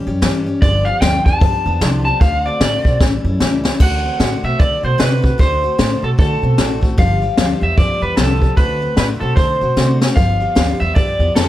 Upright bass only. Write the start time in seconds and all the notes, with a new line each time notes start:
0.07 F#2
0.22 G2
0.62 G1
1.01 D2
1.26 E2
1.41 G2
1.66 E2
1.81 C2
2.21 D2
2.60 A2
2.85 B2
3.00 A1
3.24 F#2
3.41 C#2
3.80 D2
4.20 A2
4.43 B2
4.60 D3
4.84 B2
4.99 C3
5.39 D2
5.79 A2
6.03 B2
6.18 D3
6.43 B2
6.58 A1
6.98 G1
7.38 D2
7.62 E2
7.78 G2
8.02 E2
8.17 C2
8.57 D2
8.97 A2
9.21 B2
9.37 D3
9.62 B2
9.77 C3
10.17 G1
10.56 D2
10.81 E2
10.96 G2
11.19 E2
11.35 F2